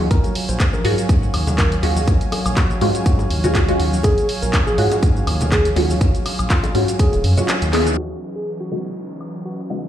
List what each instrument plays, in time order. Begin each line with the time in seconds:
Already playing: analog synth pad F#3 C#5 F5 G#5, synth stab G#3 C#4 F4 F#4
0.11 analog synth bass D#2, tine electric piano A#4, kick, closed hi-hat, shaker
0.24 closed hi-hat, high bongo, shaker
0.35 open hi-hat
0.49 analog synth bass A#1, tine electric piano C5, closed hi-hat, shaker
0.60 kick, clap, closed hi-hat, high bongo, shaker
0.73 tine electric piano A#4, high conga, shaker
0.84 analog synth bass G#2, synth stab G#3 C#4 F4 F#4, open hi-hat
0.98 closed hi-hat, shaker
1.09 analog synth bass G#2, kick, closed hi-hat, high bongo, shaker
1.23 shaker
1.33 analog synth bass D#2, open hi-hat, high conga, high woodblock
1.47 closed hi-hat, high bongo, low conga, shaker
1.58 tine electric piano A#4, kick, clap, closed hi-hat, shaker
1.72 closed hi-hat, shaker
1.83 analog synth bass D#2, synth stab G#3 C#4 F4 F#4, open hi-hat
1.96 high bongo, high conga, shaker
2.08 analog synth bass D#2, kick, closed hi-hat, shaker
2.21 closed hi-hat, shaker
2.32 open hi-hat, high bongo, high woodblock
2.46 analog synth bass A#1, closed hi-hat, high woodblock, shaker
2.57 tine electric piano F#4, kick, clap, closed hi-hat, shaker
2.70 high conga, shaker
2.81 analog synth bass G#2, synth stab G#3 C#4 F4 F#4, open hi-hat, high bongo
2.95 closed hi-hat, shaker
3.06 analog synth bass G#2, tine electric piano F#4, kick, closed hi-hat, shaker
3.19 high bongo, shaker
3.30 analog synth bass D#2, open hi-hat, high conga
3.44 synth stab G#3 C#4 F4 F#4, closed hi-hat, low conga, shaker
3.55 kick, clap, closed hi-hat, shaker
3.68 synth stab G#3 C#4 F4 F#4, closed hi-hat, high bongo, shaker
3.80 analog synth bass D#2, open hi-hat
3.93 high conga, shaker
4.03 analog synth bass D#2, tine electric piano G#4, kick, closed hi-hat, high bongo, shaker
4.18 closed hi-hat, shaker
4.29 open hi-hat
4.42 analog synth bass A#1, tine electric piano A#4, closed hi-hat, shaker
4.53 kick, clap, closed hi-hat, high bongo, shaker
4.67 tine electric piano G#4, high conga, shaker
4.78 analog synth bass G#2, synth stab G#3 C#4 F4 F#4, open hi-hat
4.92 closed hi-hat, high bongo, shaker
5.03 analog synth bass G#2, kick, closed hi-hat, shaker
5.16 shaker
5.27 analog synth bass D#2, open hi-hat, high conga, high woodblock
5.41 closed hi-hat, high bongo, low conga, shaker
5.52 tine electric piano G#4, kick, clap, closed hi-hat, shaker
5.65 closed hi-hat, shaker
5.76 analog synth bass D#2, synth stab G#3 C#4 F4 F#4, open hi-hat, high bongo
5.89 high conga, shaker
6.01 analog synth bass D#2, kick, closed hi-hat, shaker
6.15 closed hi-hat, shaker
6.26 open hi-hat, high bongo, high woodblock
6.39 analog synth bass A#1, closed hi-hat, high woodblock, shaker
6.50 tine electric piano F4, kick, clap, closed hi-hat, shaker
6.63 closed hi-hat, high bongo, high conga, shaker
6.75 analog synth bass G#2, synth stab G#3 C#4 F4 F#4, open hi-hat
6.88 closed hi-hat, shaker
6.99 tine electric piano G#4, kick, closed hi-hat, shaker
7.13 analog synth bass D#1, closed hi-hat, high bongo, shaker
7.24 analog synth bass F#2, open hi-hat, high conga
7.37 synth stab G#3 C#4 F4 F#4, closed hi-hat, low conga, shaker
7.48 clap, closed hi-hat, high bongo, shaker
7.62 analog synth bass D#2, closed hi-hat, shaker
7.73 synth stab B3 D#4 E4 G#4, clap, open hi-hat
7.86 closed hi-hat, high conga, shaker
7.98 analog synth pad E3 F#3 C#4 B4 D#5, tine electric piano F#4, downlifter
8.36 tine electric piano G#4
8.60 tine electric piano F#4
8.71 synth stab C#3 G#3 B3 D#4 E4 F#4
9.21 high woodblock
9.45 tine electric piano F#4
9.70 synth stab C#3 G#3 B3 D#4 E4 F#4